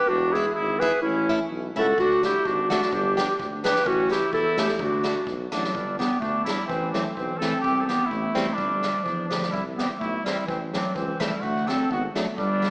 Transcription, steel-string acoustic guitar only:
0.35 0.45 G#3 medium
0.35 0.45 B3 soft
0.35 0.45 E4 medium
0.81 0.91 G#3 medium
0.81 0.91 B3 medium
0.81 0.92 E4 medium
1.29 1.39 A3 medium
1.29 1.39 C#4 medium
1.29 1.39 E4 medium
1.76 1.86 A3 medium
1.76 1.86 C#4 medium
1.76 1.86 E4 medium
2.23 2.33 A3 medium
2.23 2.33 D4 medium
2.23 2.33 F#4 medium
2.70 2.80 A3 medium
2.70 2.80 D4 medium
2.70 2.80 F#4 medium
3.17 3.27 B3 medium
3.17 3.27 D4 medium
3.17 3.27 G4 medium
3.64 3.74 B3 medium
3.64 3.74 D4 medium
3.64 3.74 G4 medium
4.09 4.20 A3 medium
4.09 4.20 C#4 medium
4.09 4.20 E4 medium
4.58 4.67 A3 medium
4.58 4.68 C#4 medium
4.58 4.67 E4 medium
5.04 5.14 A3 medium
5.04 5.14 D4 soft
5.04 5.14 F#4 medium
5.52 5.62 A3 loud
5.52 5.62 D4 medium
5.52 5.63 F#4 loud
5.99 6.09 G3 medium
5.99 6.10 B3 medium
5.99 6.10 D4 medium
6.46 6.57 G3 medium
6.46 6.57 B3 medium
6.46 6.57 D4 medium
6.94 7.05 E3 medium
6.94 7.05 A3 medium
6.94 7.05 C4 medium
7.42 7.52 E3 medium
7.42 7.52 A3 medium
7.42 7.52 C4 medium
7.89 7.99 E3 medium
7.89 7.99 G3 medium
7.89 7.99 C4 medium
8.35 8.45 E3 medium
8.35 8.46 G3 medium
8.35 8.46 C4 medium
8.83 8.93 D3 soft
8.83 8.94 G3 medium
8.83 8.93 B3 medium
9.31 9.41 D3 medium
9.31 9.41 G3 medium
9.31 9.41 B3 medium
9.80 9.89 E3 soft
9.80 9.90 G3 soft
9.80 9.90 C4 medium
10.26 10.36 E3 medium
10.26 10.36 G3 medium
10.26 10.37 C4 medium
10.74 10.84 E3 medium
10.74 10.84 A3 soft
10.74 10.84 C4 medium
11.20 11.31 E3 medium
11.20 11.31 A3 medium
11.20 11.31 C4 medium
11.67 11.78 F#3 medium
11.67 11.78 A3 soft
11.67 11.78 D4 medium
12.15 12.26 F#3 medium
12.15 12.26 A3 medium
12.15 12.26 D4 medium
12.62 12.70 G3 medium
12.62 12.70 B3 soft
12.62 12.70 D4 soft

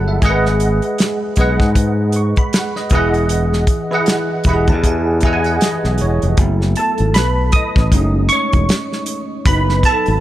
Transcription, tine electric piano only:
0.00 0.24 F#3 medium
0.00 0.24 E4 medium
0.00 0.23 G#4 medium
0.00 0.24 A4 medium
0.00 0.24 D#5 medium
0.00 0.24 F#5 medium
0.00 0.24 A5 medium
0.00 0.24 B5 medium
0.08 0.43 E5 medium
0.22 1.21 G#3 medium
0.22 1.22 G#4 medium
0.22 0.30 A#4 medium
0.22 1.23 D#5 medium
0.22 1.23 F#5 loud
0.30 1.25 B4 medium
1.37 2.68 G#3 medium
1.37 2.68 G#4 medium
1.37 2.69 B4 medium
1.37 2.16 D#5 medium
1.37 2.16 F#5 medium
2.16 2.36 C#6 medium
2.38 2.53 B5 medium
2.55 2.75 F#5 medium
2.76 2.93 D#5 medium
2.92 3.72 E3 loud
2.92 3.73 E4 medium
2.92 3.73 G#4 medium
2.92 3.74 D#5 medium
2.92 3.74 F#5 medium
3.91 4.37 E3 medium
3.91 4.38 E4 medium
3.91 4.38 G#4 medium
3.91 4.39 D#5 medium
3.91 4.39 F#5 medium
4.45 5.11 E3 medium
4.45 5.12 E4 medium
4.45 4.54 G4 medium
4.45 5.13 D#5 medium
4.45 5.13 F#5 medium
4.45 4.67 B5 medium
4.54 5.16 G#4 medium
4.69 4.84 A5 medium
4.86 5.21 G#5 medium
5.23 6.22 E3 medium
5.23 6.22 E4 medium
5.23 6.23 G#4 medium
5.23 5.62 D#5 medium
5.23 5.32 F#5 medium
5.23 5.32 G#5 medium
5.33 6.27 G#5 medium
5.46 5.61 F#5 medium
5.63 5.98 D#5 medium
6.01 6.36 C#5 medium
6.40 7.50 F#3 medium
6.40 7.50 A3 medium
6.40 7.50 B3 soft
6.40 7.50 E4 medium
6.77 7.13 A4 medium
6.77 7.16 A5 medium
7.14 7.52 B4 medium
7.14 7.54 B5 loud
7.53 8.27 D#5 medium
7.53 8.32 D#6 loud
7.93 9.42 G#3 medium
7.93 9.42 A3 medium
7.93 9.43 C#4 medium
7.93 9.43 D#4 medium
8.29 9.04 C#5 medium
8.29 9.02 C#6 medium
9.47 9.99 F#3 medium
9.47 9.99 B3 medium
9.47 10.00 D#4 medium
9.47 9.83 B4 medium
9.47 9.85 B5 loud
9.85 10.20 A4 medium
9.85 10.20 A5 loud

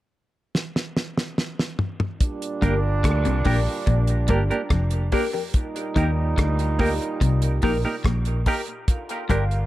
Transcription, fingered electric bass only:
2.63 3.02 G1 medium
3.05 3.24 D2 medium
3.27 3.46 C2 medium
3.46 3.66 A#1 medium
3.88 4.27 A#1 medium
4.30 4.50 G1 medium
4.71 5.11 F1 medium
5.97 6.36 D#2 medium
6.39 6.98 D2 medium
7.22 7.61 C2 medium
7.64 7.83 A#1 medium
8.05 8.45 A#1 medium
9.30 9.66 G1 medium

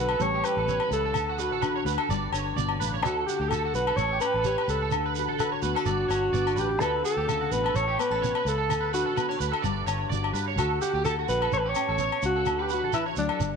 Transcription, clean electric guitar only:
0.10 0.32 A4 medium
0.34 0.56 G4 medium
0.58 0.67 A4 medium
0.69 0.80 C#5 medium
0.81 1.03 B4 medium
1.05 1.27 A4 medium
1.29 1.38 F#4 medium
1.40 1.51 B4 medium
1.52 1.62 A4 medium
1.62 1.74 B4 medium
1.76 1.85 C#5 medium
1.86 1.98 B4 medium
1.99 2.08 A4 medium
2.10 2.32 D5 medium
2.33 2.55 C#5 medium
2.57 2.79 D5 medium
2.80 2.92 B4 medium
2.94 3.03 C#5 medium
3.04 3.26 A4 medium
3.29 3.40 F#4 medium
3.41 3.51 G4 medium
3.53 3.64 A4 medium
3.65 3.86 F#4 medium
3.88 4.10 A4 medium
4.12 4.34 G4 medium
4.36 4.45 A4 medium
4.46 4.58 C#5 medium
4.59 4.81 B4 medium
4.82 5.04 A4 medium
5.06 5.14 B4 medium
5.16 5.28 B4 medium
5.29 5.39 A4 medium
5.39 5.51 B4 medium
5.52 5.62 C#5 medium
5.63 5.75 B4 medium
5.75 5.85 A4 medium
5.86 6.08 D5 medium
6.08 6.31 C#5 medium
6.33 6.55 D5 medium
6.56 6.69 B4 medium
6.69 muted clean electric guitar stroke medium
6.81 7.03 A4 medium
7.04 7.16 F#4 medium
7.17 7.27 G4 medium
7.28 7.40 A4 medium
7.41 7.63 F#4 medium
7.64 7.86 A4 medium
7.88 8.10 G4 medium
8.11 8.21 A4 medium
8.22 8.34 C#5 medium
8.35 8.57 B4 medium
8.58 8.81 A4 medium
8.80 8.91 B4 medium
8.93 9.05 B4 medium
9.06 9.16 A4 medium
9.16 9.28 B4 medium
9.29 9.38 C#5 medium
9.39 9.51 B4 medium
9.52 9.62 A4 medium
9.62 9.85 D5 medium
9.86 10.09 C#5 medium
10.09 10.32 D5 medium
10.33 10.46 B4 medium
10.48 10.57 C#5 medium
10.58 10.80 A4 medium
10.81 10.93 F#4 medium
10.94 11.04 G4 medium
11.05 11.17 A4 medium
11.19 11.41 F#4 medium
11.42 11.64 A4 medium
11.66 11.87 G4 medium
11.89 11.99 A4 medium
12.00 12.12 C#5 medium
12.36 12.58 A4 medium
12.59 12.69 B4 medium
12.70 12.82 B4 medium
12.84 12.93 A4 medium
12.94 13.06 B4 medium
13.06 13.16 C#5 medium
13.29 13.39 A4 medium
13.39 muted clean electric guitar stroke medium

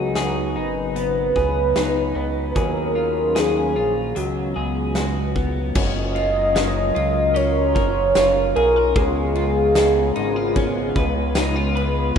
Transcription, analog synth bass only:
0.00 0.58 C#2 loud
0.56 1.32 G#1 medium
1.36 1.74 C#2 medium
1.76 2.14 C#2 medium
2.16 2.54 C#2 medium
2.56 3.78 D#2 loud
3.76 4.14 A#1 medium
4.17 4.54 C#2 loud
4.57 5.72 C#2 medium
5.76 6.92 F#1 loud
6.96 7.77 C#2 medium
7.76 8.14 F#1 medium
8.16 8.54 F#1 medium
8.57 8.94 B1 medium
8.96 10.12 C#2 loud
10.17 10.92 G#1 medium
10.96 12.12 C#2 loud

